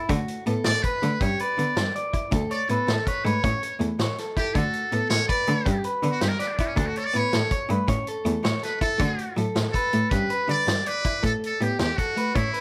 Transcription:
0.09 cello D3, clean electric guitar A3 F#4, kick, closed hi-hat
0.28 closed hi-hat
0.46 cello A2, clean electric guitar B3 A4, closed hi-hat
0.64 cello A2, muted trumpet D5, snare, closed hi-hat
0.83 muted trumpet B4, clean electric guitar B4, kick, closed hi-hat
1.02 cello D3, clean electric guitar A3, closed hi-hat
1.21 cello G2, clean electric guitar C#4 G4, muted trumpet C#5, kick, closed hi-hat
1.39 clean electric guitar B4, muted trumpet D5, closed hi-hat
1.58 cello D3, clean electric guitar B3, closed hi-hat
1.76 cello G2, snare, closed hi-hat
1.96 clean electric guitar D5, closed hi-hat
2.13 clean electric guitar E4, kick, closed hi-hat
2.32 cello D2, clean electric guitar A3 A4, kick, closed hi-hat
2.51 clean electric guitar C#5, muted trumpet D5, closed hi-hat
2.69 cello A2, clean electric guitar B3 B4, muted trumpet A4, closed hi-hat
2.87 cello A2, clean electric guitar A4, snare, closed hi-hat
3.06 muted trumpet B4, clean electric guitar C#5, kick, closed hi-hat
3.24 cello G#2, clean electric guitar A3 B4, muted trumpet C#5, closed hi-hat
3.44 cello A2, clean electric guitar C#4 C#5, kick, closed hi-hat
3.63 muted clean electric guitar stroke, closed hi-hat
3.80 cello E2, clean electric guitar A3, closed hi-hat
3.99 cello A2, clean electric guitar C#5, snare, closed hi-hat
4.18 clean electric guitar A4, snare, closed hi-hat
4.37 clean electric guitar E4 A4, muted trumpet G4, kick, closed hi-hat
4.54 cello D3, clean electric guitar A3 F#4, muted trumpet A4, kick, closed hi-hat
4.73 closed hi-hat
4.92 cello A2, clean electric guitar B3 A4, closed hi-hat
5.09 cello A2, muted trumpet C#5, snare, closed hi-hat
5.28 clean electric guitar B4, muted trumpet D5, kick, closed hi-hat
5.47 cello D3, clean electric guitar A3, closed hi-hat
5.66 cello G2, clean electric guitar C#4 G4, kick, closed hi-hat
5.84 clean electric guitar B4, closed hi-hat
6.03 cello D3, clean electric guitar B3, closed hi-hat
6.11 muted trumpet F#4
6.21 cello G2, muted trumpet G4, snare, closed hi-hat
6.29 muted trumpet A#4
6.39 muted trumpet B4, clean electric guitar D5, snare, closed hi-hat
6.48 muted trumpet D4 G4
6.57 muted trumpet B3, clean electric guitar E4, kick, closed hi-hat
6.66 muted trumpet C#4
6.76 cello D2, clean electric guitar A3 A4, muted trumpet D4, kick, closed hi-hat
6.87 muted trumpet F#4
6.96 muted trumpet A4, clean electric guitar C#5, closed hi-hat
7.05 muted trumpet D5
7.14 cello A2, clean electric guitar B3 B4, muted trumpet C#5, closed hi-hat
7.33 cello A2, clean electric guitar A4, snare, closed hi-hat
7.51 clean electric guitar C#5, kick, closed hi-hat
7.70 cello G2, clean electric guitar A3 B4, closed hi-hat
7.88 cello A2, clean electric guitar C#4 C#5, kick, closed hi-hat
8.07 clean electric guitar A4, closed hi-hat
8.25 cello E2, clean electric guitar A3, closed hi-hat
8.44 cello A2, clean electric guitar C#5, snare, closed hi-hat
8.63 clean electric guitar A4, muted trumpet B4, snare, closed hi-hat
8.81 clean electric guitar E4 A4, muted trumpet A4, kick, closed hi-hat
8.98 cello D3, clean electric guitar A3 F#4, kick, closed hi-hat
9.19 closed hi-hat
9.37 cello A2, clean electric guitar F#3 A4, closed hi-hat
9.56 cello A2, snare, closed hi-hat
9.72 muted trumpet A4, clean electric guitar B4, kick, closed hi-hat
9.93 cello A2, clean electric guitar A3, closed hi-hat
10.10 cello G2, clean electric guitar C#4 G4, muted trumpet B4, kick, closed hi-hat
10.30 clean electric guitar B4, closed hi-hat
10.48 cello D3, clean electric guitar G3, muted trumpet D5, closed hi-hat
10.67 cello G2, snare, closed hi-hat
10.86 muted trumpet B4, clean electric guitar D5, closed hi-hat
11.05 clean electric guitar E4, kick, closed hi-hat
11.23 cello A2, clean electric guitar A3 A4, muted trumpet A4, kick, closed hi-hat
11.44 muted trumpet A4, closed hi-hat
11.61 cello A2, clean electric guitar B3 G4, muted trumpet G4, closed hi-hat
11.79 cello E2, muted trumpet G4, snare, closed hi-hat
11.97 muted trumpet F#4, clean electric guitar A4, kick, closed hi-hat
12.16 clean electric guitar A3 B4, closed hi-hat
12.35 cello A2, clean electric guitar C#4 C#5, muted trumpet E4, kick, closed hi-hat
12.54 clean electric guitar B4, closed hi-hat

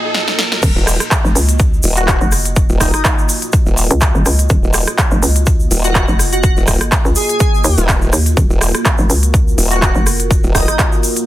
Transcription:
Already playing: analog synth pad A#3 F4 F#4 D#5, riser, swell
0.14 snare
0.28 snare
0.39 snare
0.52 snare
0.62 fm bass D#1, analog synth pad A#3 F4 F#4 D#5, kick, closed hi-hat, crash, shaker
0.76 wobble bass D#1, shaker
0.87 cross-stick, open hi-hat, shaker
1.00 cross-stick, closed hi-hat, shaker
1.11 kick, clap, closed hi-hat, shaker
1.25 fm bass F1, shaker
1.35 fm bass C#2, open hi-hat, shaker
1.49 closed hi-hat, shaker
1.59 kick, closed hi-hat, shaker
1.73 shaker
1.83 wobble bass D#1, open hi-hat, shaker
1.97 digital synth lead F#4, closed hi-hat, shaker
2.08 digital synth lead F#4, kick, clap, closed hi-hat, shaker
2.21 fm bass F1, shaker
2.32 cross-stick, open hi-hat, shaker
2.45 closed hi-hat, shaker
2.56 kick, closed hi-hat, shaker
2.69 wobble bass D#1, shaker
2.81 digital synth lead D#4, kick, cross-stick, open hi-hat, shaker
2.94 digital synth lead D#4, cross-stick, closed hi-hat, shaker
3.05 kick, clap, closed hi-hat, shaker
3.19 shaker
3.29 open hi-hat, shaker
3.42 closed hi-hat, shaker
3.53 kick, closed hi-hat, shaker
3.66 wobble bass D#1, shaker
3.77 open hi-hat, shaker
3.91 fm bass C#2, closed hi-hat, shaker
4.01 kick, clap, closed hi-hat, shaker
4.15 fm bass D#1, shaker
4.26 fm bass C#2, cross-stick, open hi-hat, shaker
4.39 closed hi-hat, shaker
4.49 fm bass D#1, kick, closed hi-hat, shaker
4.63 wobble bass D#1, shaker
4.74 cross-stick, open hi-hat, shaker
4.87 cross-stick, closed hi-hat, shaker
4.98 kick, clap, closed hi-hat, shaker
5.11 fm bass F1, shaker
5.22 fm bass C#2, open hi-hat, shaker
5.36 closed hi-hat, shaker
5.46 kick, closed hi-hat, shaker
5.60 shaker
5.71 wobble bass D#1, open hi-hat, shaker
5.84 digital synth lead F#4, closed hi-hat, shaker
5.95 digital synth lead F#4, kick, clap, closed hi-hat, shaker
6.08 fm bass F1, shaker
6.19 cross-stick, open hi-hat, shaker
6.32 digital synth lead F#4, closed hi-hat, shaker
6.43 digital synth lead F#4, kick, closed hi-hat, shaker
6.57 wobble bass D#1, shaker
6.67 kick, cross-stick, open hi-hat, shaker
6.81 cross-stick, closed hi-hat, shaker
6.92 kick, clap, closed hi-hat, shaker
7.05 fm bass C#2, shaker
7.16 digital synth lead G#4, open hi-hat, shaker
7.29 closed hi-hat, shaker
7.40 kick, closed hi-hat, shaker
7.54 shaker
7.64 fm bass D#2, open hi-hat, shaker
7.78 wobble bass D#1, closed hi-hat, shaker
7.89 kick, clap, closed hi-hat, shaker
8.02 shaker
8.13 fm bass D#2, cross-stick, open hi-hat, shaker
8.26 closed hi-hat, shaker
8.37 fm bass D#1, analog synth pad A#4, kick, closed hi-hat, shaker
8.50 wobble bass D#1, shaker
8.61 cross-stick, open hi-hat, shaker
8.75 cross-stick, closed hi-hat, shaker
8.85 kick, clap, closed hi-hat, shaker
8.98 fm bass F1, shaker
9.10 fm bass C#2, open hi-hat, shaker
9.23 closed hi-hat, shaker
9.34 kick, closed hi-hat, shaker
9.48 shaker
9.58 wobble bass D#1, open hi-hat, shaker
9.71 digital synth lead F#4, closed hi-hat, shaker
9.82 digital synth lead F#4, kick, clap, closed hi-hat, shaker
9.95 fm bass F1, shaker
10.06 cross-stick, open hi-hat, shaker
10.20 closed hi-hat, shaker
10.31 kick, closed hi-hat, shaker
10.44 wobble bass D#1, shaker
10.55 digital synth lead D#4, kick, cross-stick, open hi-hat, shaker
10.68 digital synth lead D#4, cross-stick, closed hi-hat, shaker
10.79 kick, clap, closed hi-hat, shaker
10.92 shaker
11.03 open hi-hat, shaker
11.16 closed hi-hat, shaker

